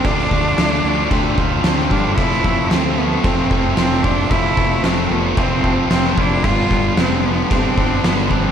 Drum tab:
CC |x---x---x---x---|x---x---x---x---|x---x---x---x---|x---x---x---x---|
SD |-o--o-------oo--|-o--o-------oo--|----o-------oo--|----o-------oo--|
BD |o-o-----o-o---o-|o-o-----o-o---o-|o-o-----o-o---o-|o-o-----o-o---o-|